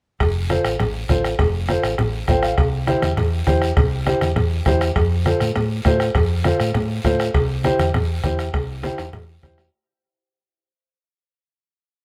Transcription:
0.20 fingered electric bass F1, bombo low, bombo rim, cowbell, long guiro
0.50 upright piano F4 A4 C5, bombo rim, high conga, short guiro
0.65 fingered electric bass A1, bombo rim, short guiro
0.79 fingered electric bass A1, bombo rim, cowbell, low conga, long guiro
1.09 fingered electric bass A1, upright piano F4 A4 C5, bombo low, bombo rim, high conga, short guiro
1.25 bombo rim, short guiro
1.39 fingered electric bass F1, bombo low, bombo rim, cowbell, low conga, long guiro
1.69 upright piano F4 A4 C5, bombo rim, high conga, short guiro
1.83 fingered electric bass A1, bombo rim, short guiro
1.98 fingered electric bass A1, bombo rim, cowbell, low conga, long guiro
2.28 fingered electric bass A1, upright piano F4 A4 C5 G5, bombo low, bombo rim, high conga, low conga, short guiro
2.43 upright piano F5, bombo rim, short guiro
2.58 fingered electric bass C2, bombo low, bombo rim, cowbell, long guiro
2.87 upright piano E4 G4 C5, bombo rim, high conga, short guiro
3.02 fingered electric bass E2, bombo rim, high conga, short guiro
3.17 fingered electric bass E2, bombo rim, cowbell, low conga, long guiro
3.47 fingered electric bass E2, upright piano E4 G4 C5, bombo low, bombo rim, high conga, short guiro
3.62 bombo rim, short guiro
3.77 fingered electric bass C2, bombo low, bombo rim, cowbell, low conga, long guiro
4.06 upright piano E4 G4 C5, bombo rim, high conga, short guiro
4.21 fingered electric bass E2, bombo rim, high conga, short guiro
4.36 fingered electric bass E2, bombo rim, cowbell, low conga, long guiro
4.66 fingered electric bass E2, upright piano E4 G4 C5, bombo low, bombo rim, high conga, low timbale, short guiro
4.81 bombo rim, short guiro
4.96 fingered electric bass F2, bombo low, bombo rim, cowbell, long guiro
5.26 upright piano F4 A4 C5, bombo rim, high conga, short guiro
5.40 fingered electric bass A2, bombo rim, high conga, short guiro
5.55 fingered electric bass A2, bombo rim, cowbell, low conga, long guiro
5.85 fingered electric bass A2, upright piano F4 A4 C5, bombo low, bombo rim, high conga, low timbale, short guiro
6.00 bombo rim, short guiro
6.15 fingered electric bass F2, bombo low, bombo rim, cowbell, low conga, long guiro
6.44 upright piano F4 A4 C5, bombo rim, high conga, short guiro
6.60 fingered electric bass A2, bombo rim, short guiro
6.74 fingered electric bass A2, bombo rim, cowbell, low conga, long guiro
7.04 fingered electric bass A2, upright piano F4 A4 C5, bombo low, bombo rim, high conga, short guiro
7.20 bombo rim, short guiro
7.34 fingered electric bass C2, bombo low, bombo rim, cowbell, long guiro
7.64 upright piano E4 G4 C5, bombo rim, high conga, short guiro
7.79 fingered electric bass E2, bombo rim, high conga, short guiro
7.94 fingered electric bass E2, bombo rim, cowbell, low conga, long guiro
8.24 fingered electric bass E2, upright piano E4 G4 C5, bombo low, bombo rim, high conga, short guiro
8.39 bombo rim, short guiro
8.54 fingered electric bass C2, bombo low, bombo rim, cowbell, long guiro
8.83 upright piano E4 G4 C5, bombo rim, high conga, high timbale, short guiro
8.98 fingered electric bass E2, bombo rim, high timbale, short guiro
9.13 fingered electric bass E2, bombo rim, cowbell, low conga, low timbale, long guiro
9.42 fingered electric bass E2, upright piano E4 G4 C5, bombo low, bombo rim, high conga, short guiro
9.58 bombo rim, low timbale, short guiro

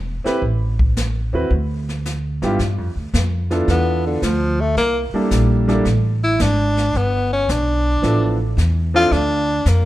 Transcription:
Already playing: upright bass E1
0.24 grand piano C4 E4 G4 B4, muted upright bass stroke, snare
0.41 upright bass A1, brush sweep, kick
0.79 kick
0.97 snare, hi-hat pedal
1.33 upright bass D#2, grand piano C4 E4 F#4 B4
1.50 upright bass D2, brush sweep, kick
1.89 snare
2.06 snare, hi-hat pedal
2.42 upright bass G#1, grand piano G2 B3 E4 F4 G4, snare
2.59 upright bass G2, brush sweep, kick, snare
2.78 upright bass F2
2.96 upright bass D2
3.14 upright bass F2, kick, snare, hi-hat pedal
3.51 grand piano B3 D4 E4 F4 A4, snare
3.67 upright bass E2, tenor saxophone B3, brush sweep, kick, snare
4.07 tenor saxophone D3
4.22 upright bass D2, tenor saxophone F3, kick, snare, hi-hat pedal
4.61 tenor saxophone A3
4.76 upright bass C2, tenor saxophone A#3, brush sweep, kick, snare
5.12 grand piano G3 A#3 D4 E4 A4, muted upright bass stroke
5.31 upright bass A#1, kick, snare, hi-hat pedal
5.68 grand piano G3 A#3 D4 E4 A4, snare
5.85 upright bass A1, brush sweep, kick, snare
6.24 tenor saxophone E4
6.39 upright bass G#1, tenor saxophone D4, kick, snare, hi-hat pedal
6.77 snare
6.94 upright bass G1, tenor saxophone B3, brush sweep, kick, snare
7.33 tenor saxophone C#4
7.48 upright bass B1, tenor saxophone D4, kick, snare, hi-hat pedal
8.02 upright bass A1, grand piano F3 B3 D4 E4 A4, brush sweep, kick, snare
8.57 upright bass E2, kick, snare, hi-hat pedal
8.94 grand piano F3 C4 D4 E4 A4, tenor saxophone F4
9.11 upright bass D2, tenor saxophone D4, brush sweep, kick, snare
9.65 upright bass F2, tenor saxophone A#3, kick, snare, hi-hat pedal

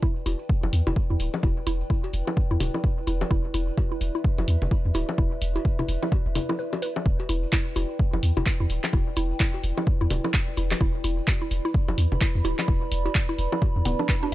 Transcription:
Already playing: ambient pad E4 B4 D5 G5
0.02 synth arpeggio sound E4, kick, tambourine
0.16 tambourine
0.26 sub bass E1, synth arpeggio sound E4, open hi-hat, tambourine, cowbell
0.39 tambourine
0.49 kick, tambourine
0.63 sub bass E1, synth arpeggio sound E4, tambourine, low bongo
0.73 sub bass E2, open hi-hat, tambourine
0.87 sub bass E1, synth arpeggio sound E4, tambourine, cowbell, low conga
0.96 kick, tambourine
1.10 sub bass E2, synth arpeggio sound E4, tambourine
1.20 sub bass D1, open hi-hat, tambourine
1.33 tambourine, low bongo
1.43 sub bass E1, synth arpeggio sound E4, kick, tambourine, cowbell
1.57 tambourine
1.67 sub bass E1, synth arpeggio sound E4, open hi-hat, tambourine
1.81 tambourine
1.90 synth arpeggio sound E4, kick, tambourine
2.04 tambourine, cowbell
2.13 sub bass E1, open hi-hat, tambourine
2.27 synth arpeggio sound E4, tambourine, low bongo
2.37 kick, tambourine
2.51 sub bass E2, synth arpeggio sound E4, tambourine
2.60 sub bass D1, open hi-hat, tambourine, cowbell, low conga
2.74 synth arpeggio sound E4, tambourine, low bongo
2.84 kick, tambourine
2.98 tambourine
3.07 sub bass E1, synth arpeggio sound E4, open hi-hat, tambourine
3.21 tambourine, cowbell, low bongo
3.31 sub bass E1, synth arpeggio sound E4, kick, tambourine
3.45 tambourine
3.54 sub bass E1, synth arpeggio sound E4, open hi-hat, tambourine
3.68 ambient pad E5, tambourine
3.78 kick, tambourine, cowbell
3.91 synth arpeggio sound E4, tambourine
4.01 sub bass E1, open hi-hat, tambourine
4.15 synth arpeggio sound E4, tambourine
4.24 kick, tambourine
4.38 sub bass E1, synth arpeggio sound E4, tambourine, cowbell, low bongo
4.48 sub bass E2, open hi-hat, tambourine
4.62 sub bass E1, tambourine, low conga
4.71 synth arpeggio sound E4, kick, tambourine
4.85 sub bass E2, tambourine
4.94 sub bass D1, synth arpeggio sound E4, open hi-hat, tambourine, cowbell
5.09 tambourine, low bongo
5.18 sub bass E1, synth arpeggio sound E4, kick, tambourine
5.32 tambourine
5.41 sub bass E1, open hi-hat, tambourine
5.56 synth arpeggio sound E4, tambourine, cowbell
5.65 kick, tambourine
5.79 synth arpeggio sound E4, tambourine, low conga
5.88 sub bass E1, open hi-hat, tambourine
6.02 synth arpeggio sound E4, tambourine, low bongo
6.12 kick, tambourine, cowbell
6.26 sub bass E1, tambourine
6.35 synth arpeggio sound E4, open hi-hat, tambourine, low conga
6.49 synth arpeggio sound E4, tambourine, low bongo
6.59 synth arpeggio sound B4, tambourine
6.72 tambourine, cowbell, low bongo
6.82 synth arpeggio sound B4, open hi-hat, tambourine
6.96 tambourine, low bongo
7.06 sub bass E1, kick, tambourine
7.20 tambourine, cowbell
7.29 sub bass E1, synth arpeggio sound E4, open hi-hat, tambourine
7.43 ambient pad G5, tambourine
7.53 synth arpeggio sound E4, kick, clap, tambourine
7.67 tambourine
7.76 sub bass E1, synth arpeggio sound E4, open hi-hat, tambourine, cowbell
7.91 tambourine
7.99 kick, tambourine
8.13 sub bass E1, synth arpeggio sound E4, tambourine, low bongo
8.23 sub bass E2, open hi-hat, tambourine
8.37 sub bass E1, synth arpeggio sound E4, tambourine, cowbell, low conga
8.46 kick, clap, tambourine
8.60 sub bass E2, synth arpeggio sound E4, tambourine
8.70 sub bass D1, open hi-hat, tambourine
8.83 clap, tambourine, low bongo
8.93 sub bass E1, synth arpeggio sound E4, kick, tambourine, cowbell
9.07 tambourine
9.16 sub bass E1, synth arpeggio sound E4, open hi-hat, tambourine
9.31 tambourine
9.40 synth arpeggio sound E4, kick, clap, tambourine
9.53 tambourine, cowbell
9.63 sub bass E1, open hi-hat, tambourine
9.77 synth arpeggio sound E4, tambourine, low bongo
9.87 kick, tambourine
10.01 sub bass E2, synth arpeggio sound E4, tambourine
10.10 sub bass D1, open hi-hat, tambourine, cowbell, low conga
10.24 synth arpeggio sound E4, tambourine, low bongo
10.34 kick, clap, tambourine
10.48 tambourine
10.57 sub bass E1, synth arpeggio sound E4, open hi-hat, tambourine
10.71 clap, tambourine, cowbell, low bongo
10.81 sub bass E1, synth arpeggio sound E4, kick, tambourine
10.95 tambourine
11.04 sub bass E1, synth arpeggio sound E4, open hi-hat, tambourine
11.19 ambient pad B5, tambourine
11.27 kick, clap, tambourine, cowbell
11.41 synth arpeggio sound E4, tambourine
11.51 sub bass E1, open hi-hat, tambourine
11.65 synth arpeggio sound E4, tambourine
11.74 kick, tambourine
11.88 sub bass E1, synth arpeggio sound E4, tambourine, cowbell, low bongo
11.98 sub bass E2, open hi-hat, tambourine
12.12 sub bass E1, tambourine, low conga
12.21 synth arpeggio sound E4, kick, clap, tambourine
12.35 sub bass E2, tambourine
12.44 sub bass D1, synth arpeggio sound E4, open hi-hat, tambourine, cowbell
12.59 clap, tambourine, low bongo
12.68 sub bass E1, synth arpeggio sound E4, kick, tambourine
12.82 tambourine
12.92 sub bass E1, open hi-hat, tambourine
13.06 synth arpeggio sound E4, tambourine, cowbell
13.15 kick, clap, tambourine
13.28 synth arpeggio sound E4, tambourine
13.38 sub bass E1, open hi-hat, tambourine
13.52 synth arpeggio sound E4, tambourine, low bongo
13.62 kick, tambourine, cowbell
13.76 sub bass E2, tambourine
13.85 sub bass D1, synth arpeggio sound B3, open hi-hat, tambourine, low conga
13.99 synth arpeggio sound D4, tambourine, low bongo
14.09 synth arpeggio sound B4, kick, clap, tambourine
14.22 synth arpeggio sound D4, tambourine, cowbell

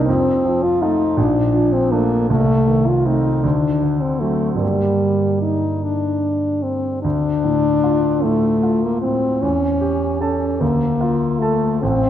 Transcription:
Already playing: grand piano C2 G3 D#4
0.06 grand piano F2, french horn C4
0.45 grand piano F3
0.63 french horn F4
0.82 grand piano A3 F4, french horn D#4
1.17 grand piano A#1, french horn D4
1.54 grand piano F3
1.73 french horn C4
1.91 grand piano A3 D4, french horn A#3
2.30 grand piano C2, french horn A3
2.68 grand piano D#3
2.88 french horn F4
3.06 grand piano A3 C4, french horn D#4
3.44 grand piano D2, french horn D4
3.82 grand piano D3
4.01 french horn C4
4.20 grand piano F#3 C4, french horn A3
4.55 grand piano G2 D3 G3
4.59 french horn G3, grand piano A#3
5.42 french horn D#4
5.84 french horn D4
6.63 french horn C4
7.03 grand piano D2, french horn D4
7.44 grand piano A2
7.84 grand piano F4
8.23 grand piano A2, french horn A3
8.63 grand piano F4
8.83 french horn A#3
9.01 grand piano A2, french horn C4
9.42 grand piano E2, french horn C#4
9.81 grand piano G4
10.21 french horn C#4, grand piano A4 A5
10.61 grand piano D2, french horn A#3
11.01 grand piano F4
11.39 french horn A3, grand piano A4 A5
11.82 grand piano A1, french horn C4

